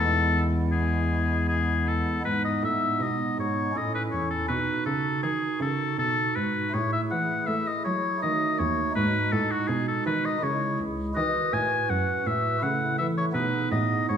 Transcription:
0.00 2.01 E2 medium
0.00 2.19 G#3 medium
0.00 2.20 B3 medium
0.00 2.21 E4 soft
0.00 0.43 A4 loud
0.72 1.45 G#4 medium
1.48 1.89 G#4 medium
1.88 2.24 A4 medium
2.21 3.70 G#3 soft
2.21 3.70 B3 soft
2.21 3.71 D#4 soft
2.25 2.60 G#2 soft
2.25 2.61 G#2 soft
2.25 2.44 B4 medium
2.45 2.63 D#5 medium
2.63 2.98 A2 medium
2.63 2.97 A2 soft
2.63 3.03 E5 medium
3.00 3.36 B2 medium
3.00 3.35 B2 soft
3.00 3.39 D#5 medium
3.38 3.73 G#2 medium
3.38 3.72 G#2 soft
3.38 3.78 C#5 medium
3.72 4.46 C#4 soft
3.72 4.47 E4 soft
3.72 4.47 A4 soft
3.76 4.11 A2 soft
3.76 4.10 A2 soft
3.76 3.94 D#5 medium
3.95 4.03 B4 medium
4.11 4.47 E2 soft
4.11 4.46 E2 soft
4.11 4.30 C#5 medium
4.30 4.48 A4 medium
4.47 4.84 B2 medium
4.47 4.83 B2 soft
4.47 6.69 D#4 soft
4.47 6.70 F#4 soft
4.47 4.85 B4 medium
4.86 5.21 C#3 medium
4.86 5.20 C#3 soft
4.86 5.22 A4 medium
5.23 5.59 D#3 medium
5.23 5.58 D#3 soft
5.23 5.60 G#4 medium
5.61 5.96 C#3 medium
5.61 5.96 C#3 soft
5.61 5.99 A4 medium
5.98 6.34 B2 medium
5.98 6.33 B2 soft
5.98 6.37 A4 medium
6.36 6.72 G#2 medium
6.36 6.71 G#2 soft
6.36 6.75 B4 medium
6.70 7.47 A3 soft
6.70 8.18 E4 soft
6.70 8.19 G#4 soft
6.70 6.92 C#5 medium
6.74 7.09 A2 medium
6.74 7.08 A2 soft
6.93 7.01 E5 medium
7.11 7.45 E3 medium
7.11 7.46 E3 medium
7.11 7.48 F#5 medium
7.47 7.83 A3 medium
7.47 7.82 A3 soft
7.47 7.69 E5 medium
7.67 7.84 D#5 medium
7.85 8.19 F#3 soft
7.85 8.20 F#3 medium
7.85 8.22 C#5 medium
8.19 8.92 A3 soft
8.19 8.91 D#4 soft
8.19 8.92 F#4 soft
8.19 8.60 D#5 medium
8.23 8.56 D#3 soft
8.23 8.58 D#3 medium
8.59 8.93 D#2 soft
8.59 8.94 D#2 medium
8.59 8.95 C#5 medium
8.91 10.36 G#3 soft
8.91 10.37 D#4 soft
8.91 10.38 F#4 soft
8.95 9.29 G#2 soft
8.95 9.31 G#2 medium
8.95 9.34 B4 medium
9.32 9.66 A2 medium
9.32 9.67 A2 medium
9.32 9.53 A4 medium
9.51 9.69 F#4 medium
9.68 10.02 B2 soft
9.68 10.04 B2 medium
9.68 9.87 G#4 medium
9.88 10.06 A4 medium
10.06 10.39 D#3 soft
10.06 10.41 D#3 medium
10.06 10.27 B4 medium
10.25 10.44 D#5 medium
10.38 11.12 G#3 soft
10.38 11.12 E4 soft
10.38 11.13 G#4 soft
10.43 10.76 C#3 medium
10.43 10.77 C#3 medium
10.43 10.80 C#5 medium
10.79 11.12 C#2 medium
10.79 11.14 C#2 medium
11.13 11.49 D#3 medium
11.13 11.51 D#3 medium
11.13 12.57 F#4 soft
11.13 12.58 B4 soft
11.13 11.55 D#5 medium
11.53 11.86 A2 medium
11.53 11.87 A2 medium
11.53 11.91 G#5 medium
11.90 12.23 F#2 medium
11.90 12.24 F#2 medium
11.90 12.28 F#5 medium
12.26 12.60 A2 medium
12.26 12.59 A2 soft
12.26 12.64 E5 medium
12.59 12.97 C#3 medium
12.59 13.31 A3 soft
12.59 13.32 E4 soft
12.59 13.33 A4 soft
12.63 12.96 C#3 medium
12.63 12.98 F#5 medium
12.98 13.33 E3 medium
12.98 13.32 E3 medium
12.98 13.07 E5 medium
13.18 13.26 C#5 medium
13.32 13.69 B2 medium
13.32 14.17 B3 soft
13.32 14.17 D#4 soft
13.32 14.17 G#4 soft
13.32 13.71 B4 medium
13.72 14.07 A2 medium
13.72 14.06 A2 medium
13.72 14.08 D#5 medium
14.09 14.17 G#2 medium
14.09 14.17 G#2 soft
14.09 14.17 C#5 medium

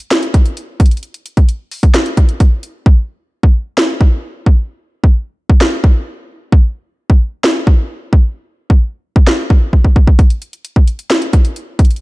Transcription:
0.00 closed hi-hat medium
0.11 snare loud
0.11 closed hi-hat medium
0.23 closed hi-hat medium
0.34 kick medium
0.34 closed hi-hat medium
0.46 closed hi-hat medium
0.57 closed hi-hat medium
0.80 kick loud
0.80 closed hi-hat medium
0.86 closed hi-hat medium
0.91 closed hi-hat medium
0.97 closed hi-hat soft
1.03 closed hi-hat medium
1.14 closed hi-hat medium
1.26 closed hi-hat medium
1.37 kick medium
1.37 closed hi-hat medium
1.49 closed hi-hat medium
1.71 open hi-hat medium
1.83 kick medium
1.83 closed hi-hat medium
1.94 snare loud
1.94 closed hi-hat medium
2.06 closed hi-hat medium
2.17 kick medium
2.17 closed hi-hat medium
2.29 closed hi-hat medium
2.40 kick loud
2.40 closed hi-hat medium
2.63 closed hi-hat medium
2.86 kick loud
3.43 kick medium
3.78 snare loud
4.01 kick medium
4.46 kick medium
5.04 kick loud
5.50 kick loud
5.61 snare loud
5.84 kick loud
6.52 kick loud
7.10 kick loud
7.44 snare loud
7.67 kick loud
8.13 kick loud
8.70 kick medium
9.16 kick loud
9.27 snare loud
9.50 kick medium
9.73 kick medium
9.84 kick medium
9.96 kick medium
10.07 kick medium
10.19 kick loud
10.19 closed hi-hat medium
10.30 closed hi-hat medium
10.42 closed hi-hat medium
10.53 closed hi-hat medium
10.65 closed hi-hat medium
10.76 kick medium
10.88 closed hi-hat medium
10.99 closed hi-hat medium
11.10 snare loud
11.10 closed hi-hat medium
11.22 closed hi-hat medium
11.33 kick medium
11.33 closed hi-hat medium
11.45 closed hi-hat medium
11.56 closed hi-hat medium
11.79 kick loud
11.79 closed hi-hat medium
11.85 closed hi-hat medium
11.91 closed hi-hat medium
11.96 closed hi-hat soft

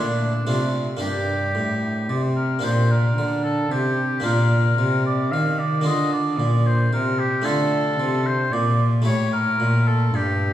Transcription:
0.00 0.43 A#2 soft
0.00 0.45 A#2 medium
0.00 0.31 A3 soft
0.00 0.32 D4 soft
0.00 0.74 D4 medium
0.00 0.32 F4 soft
0.46 1.00 C3 medium
0.46 0.97 C3 soft
0.46 0.86 A3 soft
0.46 0.86 D4 soft
0.46 0.86 F4 soft
0.97 1.56 G2 medium
0.97 2.57 A#3 soft
0.97 2.58 D4 soft
0.97 2.58 G4 soft
1.01 1.51 G2 soft
1.01 2.05 G4 medium
1.55 2.10 A2 medium
1.55 2.05 A2 soft
2.09 2.63 C3 medium
2.09 2.59 C3 soft
2.09 2.21 D5 medium
2.36 2.65 A#4 medium
2.59 4.19 A#3 soft
2.59 4.19 D4 soft
2.59 4.20 G4 soft
2.63 3.13 A#2 soft
2.63 3.16 A#2 medium
2.63 2.92 C5 medium
2.91 3.43 A#4 medium
3.17 3.70 D3 medium
3.17 3.67 D3 soft
3.43 3.72 A4 medium
3.71 4.24 C3 medium
3.71 4.21 C3 soft
3.71 4.24 G4 medium
4.20 5.79 A#3 soft
4.20 5.80 D4 soft
4.20 5.81 F4 soft
4.24 4.77 A#2 medium
4.24 4.74 A#2 soft
4.24 5.03 A#4 medium
4.78 5.33 C3 medium
4.78 5.28 C3 soft
5.06 5.33 D5 medium
5.32 5.87 D#3 medium
5.32 5.82 D#3 soft
5.32 5.60 F5 medium
5.59 5.87 D5 medium
5.81 6.40 D3 medium
5.81 7.40 A#3 soft
5.81 7.41 D4 soft
5.81 7.41 F4 soft
5.86 6.35 D3 soft
5.86 6.12 D#5 medium
6.13 6.68 D5 medium
6.39 6.92 A#2 medium
6.39 6.89 A#2 medium
6.67 6.92 C5 medium
6.93 7.42 C3 soft
6.93 7.45 C3 medium
6.93 7.21 A#4 medium
7.19 7.46 G4 medium
7.42 7.96 A3 soft
7.42 9.01 D4 soft
7.42 9.02 F4 soft
7.42 8.27 A4 medium
7.46 7.95 D3 medium
7.46 7.98 D3 medium
7.99 8.52 C3 medium
7.99 8.49 C3 medium
8.26 8.54 C5 medium
8.52 9.08 A#2 medium
8.52 9.03 A#2 medium
8.52 8.87 D5 medium
9.02 10.53 A3 soft
9.02 10.53 E4 soft
9.02 10.53 G4 soft
9.06 9.60 A2 medium
9.06 9.56 A2 medium
9.06 9.31 C#5 medium
9.33 9.89 A#4 medium
9.60 10.10 A#2 medium
9.60 10.13 A#2 medium
9.88 10.17 A4 medium
10.14 10.53 G2 medium
10.14 10.53 G4 medium

